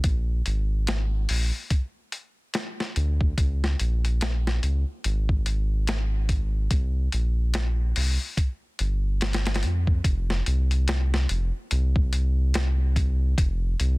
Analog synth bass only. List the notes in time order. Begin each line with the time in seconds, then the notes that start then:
0.04 A#1
0.47 G#1
1.30 A#1
2.97 D2
3.38 C#2
3.80 A#1
4.63 C#2
5.05 G#1
6.71 C2
7.13 A#1
7.97 C2
8.80 G1
9.63 F2
10.05 F1
10.47 C2
11.30 F1
11.72 C2
13.38 F1
13.80 C2